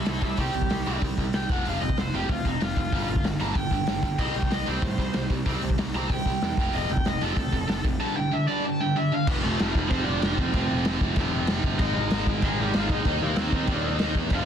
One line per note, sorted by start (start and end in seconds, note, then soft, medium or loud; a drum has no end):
0.06 0.19 C2 medium
0.06 0.20 C3 medium
0.06 0.22 G3 medium
0.06 0.22 E4 medium
0.06 0.23 A4 medium
0.06 snare loud
0.06 open hi-hat medium
0.21 0.33 C2 medium
0.21 0.37 C3 medium
0.21 0.37 G3 medium
0.21 0.38 E4 medium
0.21 0.40 A4 medium
0.21 kick medium
0.21 open hi-hat medium
0.37 0.49 C2 loud
0.37 0.53 C3 medium
0.37 0.53 G3 medium
0.37 0.54 C4 medium
0.37 1.01 G4 loud
0.37 kick medium
0.37 open hi-hat medium
0.53 0.66 C2 medium
0.53 0.69 C3 medium
0.53 0.69 G3 medium
0.53 open hi-hat medium
0.62 kick medium
0.70 0.82 C2 medium
0.70 0.85 C3 medium
0.70 0.85 G3 medium
0.70 snare loud
0.70 open hi-hat medium
0.86 0.97 C2 medium
0.86 1.01 C3 medium
0.86 1.02 G3 loud
0.86 1.02 C4 medium
0.86 open hi-hat medium
1.02 1.13 C2 loud
1.02 1.17 C3 medium
1.02 1.17 G3 medium
1.02 kick loud
1.02 open hi-hat medium
1.18 1.29 C2 loud
1.18 1.33 C3 medium
1.18 1.33 G3 medium
1.18 kick medium
1.18 open hi-hat medium
1.33 1.45 C2 medium
1.33 1.49 C3 medium
1.33 1.49 G3 medium
1.33 1.50 G5 loud
1.33 snare loud
1.33 open hi-hat medium
1.49 1.61 F1 medium
1.49 1.65 F2 medium
1.49 1.65 C3 loud
1.49 1.66 F3 loud
1.49 1.67 F#5 loud
1.49 kick loud
1.49 open hi-hat medium
1.65 1.77 F1 medium
1.65 1.81 F2 medium
1.65 1.81 C3 medium
1.65 1.81 F3 loud
1.65 1.81 F5 loud
1.65 open hi-hat medium
1.81 1.92 F1 loud
1.81 1.96 F2 medium
1.81 1.96 C3 medium
1.81 1.97 D#5 medium
1.81 open hi-hat medium
1.89 kick medium
1.97 2.08 F1 loud
1.97 2.12 F2 medium
1.97 2.12 C3 medium
1.97 2.13 C5 medium
1.97 snare loud
1.97 open hi-hat medium
2.13 2.24 F1 medium
2.13 2.29 F2 medium
2.13 2.29 C3 loud
2.13 2.29 F3 loud
2.13 2.30 G4 medium
2.13 open hi-hat soft
2.29 2.40 D2 loud
2.29 2.44 F2 medium
2.29 2.44 C3 medium
2.29 2.45 F4 loud
2.29 kick loud
2.29 open hi-hat medium
2.45 2.56 F1 medium
2.45 2.59 F2 medium
2.45 2.60 C3 medium
2.45 2.62 D#4 medium
2.45 kick medium
2.45 open hi-hat medium
2.61 2.72 F1 medium
2.61 2.75 F2 medium
2.61 2.75 C3 loud
2.61 3.23 F4 medium
2.61 snare loud
2.61 open hi-hat medium
2.77 2.88 F1 medium
2.77 2.91 F2 medium
2.77 2.92 C3 medium
2.77 kick medium
2.77 open hi-hat medium
2.92 3.03 G1 medium
2.92 3.08 G2 medium
2.92 3.08 D3 medium
2.92 3.08 G3 loud
2.92 kick loud
2.92 open hi-hat medium
3.08 3.19 G1 medium
3.08 3.23 G2 medium
3.08 3.23 D3 medium
3.08 open hi-hat medium
3.16 kick medium
3.24 3.35 G1 loud
3.24 3.39 G2 medium
3.24 3.39 D3 medium
3.24 snare loud
3.24 open hi-hat medium
3.40 3.51 G1 medium
3.40 3.54 G2 medium
3.40 3.54 D3 medium
3.40 3.55 G3 medium
3.40 3.57 A#5 medium
3.40 open hi-hat medium
3.55 3.67 G1 medium
3.55 3.70 G2 medium
3.55 3.70 D3 medium
3.55 4.18 G5 loud
3.55 kick loud
3.55 open hi-hat medium
3.71 3.82 G1 medium
3.71 3.86 G2 medium
3.71 3.86 D3 medium
3.71 kick medium
3.71 open hi-hat medium
3.87 3.99 G1 medium
3.87 4.02 G2 medium
3.87 4.03 D3 medium
3.87 snare loud
3.87 open hi-hat medium
4.03 4.14 G1 medium
4.03 4.18 G2 medium
4.03 4.18 D3 medium
4.03 kick loud
4.03 open hi-hat medium
4.18 4.30 C2 loud
4.18 4.34 C3 medium
4.18 4.34 G3 medium
4.18 4.35 C4 loud
4.18 4.35 D#5 medium
4.18 kick loud
4.18 crash loud
4.34 4.47 C2 medium
4.34 4.49 C3 medium
4.34 4.50 G3 medium
4.34 4.51 G5 medium
4.34 open hi-hat medium
4.42 kick medium
4.51 4.62 C2 loud
4.51 4.65 C3 medium
4.51 4.65 G3 loud
4.51 4.67 D#5 medium
4.51 snare loud
4.51 open hi-hat medium
4.66 4.78 C2 medium
4.66 4.82 C3 medium
4.66 4.82 G3 medium
4.66 4.82 C4 loud
4.66 5.29 C5 medium
4.66 open hi-hat medium
4.82 4.94 A2 loud
4.82 4.97 C3 medium
4.82 4.97 G3 medium
4.82 kick loud
4.82 open hi-hat medium
4.98 5.09 C2 medium
4.98 5.13 C3 medium
4.98 5.13 G3 medium
4.98 kick medium
4.98 open hi-hat medium
5.13 5.26 C2 medium
5.13 5.29 C3 medium
5.13 5.29 G3 medium
5.13 snare loud
5.13 open hi-hat medium
5.30 5.41 C2 medium
5.30 5.45 C3 medium
5.30 5.45 G3 medium
5.30 kick medium
5.30 open hi-hat medium
5.46 5.57 C2 loud
5.46 5.61 C3 medium
5.46 5.61 G3 loud
5.46 5.62 C4 loud
5.46 kick loud
5.46 open hi-hat medium
5.61 5.74 C2 medium
5.61 5.77 C3 medium
5.61 5.77 G3 medium
5.61 open hi-hat medium
5.70 kick medium
5.78 5.90 C2 loud
5.78 5.93 C3 medium
5.78 5.93 G3 loud
5.78 snare loud
5.78 open hi-hat medium
5.93 6.06 C2 medium
5.93 6.09 C3 loud
5.93 6.10 G3 medium
5.93 6.10 C4 loud
5.93 6.11 A#5 loud
5.93 open hi-hat medium
6.10 6.21 C2 medium
6.10 6.25 C3 medium
6.10 6.25 G3 medium
6.10 6.73 G5 loud
6.10 kick loud
6.10 open hi-hat medium
6.25 6.37 C2 medium
6.25 6.41 C3 medium
6.25 6.41 G3 medium
6.25 kick medium
6.25 open hi-hat medium
6.42 6.53 E2 medium
6.42 6.57 C3 medium
6.42 6.57 G3 medium
6.42 snare loud
6.42 open hi-hat medium
6.57 6.69 F1 medium
6.57 6.72 F2 medium
6.57 6.73 C3 loud
6.57 6.73 F3 loud
6.57 kick loud
6.57 open hi-hat medium
6.73 6.85 F1 loud
6.73 6.88 F2 medium
6.73 6.89 C3 medium
6.73 6.89 F3 medium
6.73 6.90 D#5 loud
6.73 open hi-hat medium
6.89 7.00 F1 medium
6.89 7.04 F2 medium
6.89 7.04 C3 medium
6.89 7.06 G5 loud
6.89 open hi-hat medium
6.97 kick medium
7.05 7.17 F1 loud
7.05 7.20 F2 medium
7.05 7.20 C3 medium
7.05 7.21 D#5 medium
7.05 snare loud
7.05 open hi-hat medium
7.21 7.32 F1 medium
7.21 7.36 F2 medium
7.21 7.36 C3 medium
7.21 7.37 F3 loud
7.21 7.84 A4 loud
7.21 open hi-hat medium
7.36 7.48 D2 loud
7.36 7.51 F2 medium
7.36 7.52 C3 medium
7.36 kick loud
7.36 open hi-hat medium
7.52 7.64 F1 medium
7.52 7.66 F2 medium
7.52 7.67 C3 medium
7.52 kick medium
7.52 open hi-hat medium
7.67 7.80 F1 medium
7.67 7.83 F2 medium
7.67 7.83 C3 medium
7.67 snare loud
7.67 open hi-hat medium
7.84 7.96 F1 medium
7.84 7.99 F2 medium
7.84 7.99 C3 medium
7.84 kick medium
7.84 open hi-hat medium
8.00 8.15 G2 medium
8.00 8.15 D3 loud
8.00 8.16 G3 medium
8.00 8.16 A5 loud
8.16 8.31 G2 medium
8.16 8.31 D3 medium
8.16 8.32 G5 loud
8.32 8.47 G2 medium
8.32 8.47 D3 medium
8.32 8.47 E5 medium
8.48 8.63 G2 medium
8.48 8.63 D3 loud
8.48 8.64 G3 medium
8.48 8.64 D5 medium
8.65 8.79 G2 medium
8.65 8.79 D3 medium
8.65 8.80 A5 loud
8.80 8.95 G2 medium
8.80 8.95 D3 medium
8.80 8.96 G5 medium
8.96 9.10 G2 medium
8.96 9.11 D3 medium
8.96 9.12 E5 medium
9.12 9.26 G2 medium
9.12 9.26 D3 medium
9.12 9.28 F5 loud
9.27 9.41 F1 loud
9.27 9.90 F2 medium
9.27 9.91 C3 medium
9.27 9.91 F3 medium
9.27 9.33 B3 medium
9.27 9.34 B4 medium
9.27 kick loud
9.27 crash loud
9.27 crash medium
9.43 9.58 F1 loud
9.43 9.73 A3 loud
9.43 9.74 A4 medium
9.59 9.74 F1 loud
9.59 snare loud
9.59 crash medium
9.75 9.89 F1 medium
9.75 kick loud
9.89 10.05 F1 loud
9.89 10.53 F2 medium
9.89 10.54 C3 medium
9.89 10.03 C4 loud
9.89 10.06 C5 medium
9.89 kick loud
9.89 crash medium
9.93 10.54 F3 medium
10.04 10.21 F1 medium
10.04 10.35 D4 loud
10.04 10.36 D5 medium
10.22 10.37 F1 medium
10.22 snare loud
10.22 crash medium
10.36 10.52 F1 medium
10.36 10.96 C4 loud
10.36 10.97 C5 medium
10.36 kick loud
10.53 10.68 F1 medium
10.53 11.15 F2 medium
10.53 11.17 C3 loud
10.53 11.18 F3 loud
10.53 kick loud
10.53 crash medium
10.71 10.84 F1 loud
10.85 11.00 F1 loud
10.85 snare loud
10.85 crash medium
11.01 11.15 F1 medium
11.01 kick loud
11.16 11.31 F1 medium
11.16 11.79 F2 medium
11.16 11.80 C3 medium
11.16 11.80 F3 medium
11.16 kick loud
11.16 crash medium
11.34 11.47 F1 loud
11.47 11.62 F1 medium
11.47 snare loud
11.47 crash medium
11.64 11.78 G1 medium
11.64 kick loud
11.79 11.93 G#1 loud
11.79 12.42 G#2 loud
11.79 12.43 D#3 loud
11.79 12.43 G#3 loud
11.79 11.94 D#4 loud
11.79 11.94 D#5 medium
11.79 kick loud
11.79 crash medium
11.95 12.10 G#1 loud
11.95 12.25 D#4 loud
11.95 12.25 D#5 medium
12.11 12.25 G#1 loud
12.11 snare loud
12.11 crash medium
12.27 12.41 G#1 medium
12.27 kick medium
12.42 12.56 G#1 loud
12.42 13.05 G#2 medium
12.42 13.04 D#3 medium
12.42 12.58 G#3 medium
12.42 13.06 G#3 loud
12.42 12.60 G#4 medium
12.42 kick loud
12.42 crash medium
12.59 12.73 G#1 loud
12.59 12.74 G3 medium
12.59 12.75 G4 medium
12.73 12.88 G#1 medium
12.73 12.89 F3 medium
12.73 12.90 F4 loud
12.73 snare loud
12.73 crash medium
12.89 13.03 G#1 medium
12.89 13.23 D#4 loud
12.89 13.20 D#5 medium
12.89 kick loud
13.05 13.19 D#2 medium
13.05 13.67 D#3 medium
13.05 13.68 A#3 medium
13.05 13.69 D#4 loud
13.05 kick medium
13.05 crash medium
13.22 13.35 D#2 medium
13.22 13.40 A#3 loud
13.22 13.37 A#4 medium
13.36 13.50 D#2 loud
13.36 13.71 C4 medium
13.36 13.67 C5 medium
13.36 snare loud
13.36 crash medium
13.52 13.66 D#2 medium
13.52 kick medium
13.67 13.82 D#2 loud
13.67 14.31 D#3 medium
13.67 14.31 A#3 medium
13.67 14.32 D#4 medium
13.67 kick loud
13.67 crash medium
13.71 13.87 D4 loud
13.71 13.85 D5 medium
13.84 13.98 D#2 medium
13.84 14.15 D#4 loud
13.84 14.15 D#5 medium
13.99 14.14 D#2 medium
13.99 snare loud
13.99 crash medium
14.15 14.29 E2 medium
14.15 kick loud
14.30 14.45 F1 loud
14.30 14.45 F2 loud
14.30 14.45 C3 loud
14.30 14.45 F3 medium
14.30 kick loud
14.30 crash medium
14.34 14.45 F3 loud
14.34 14.45 F4 loud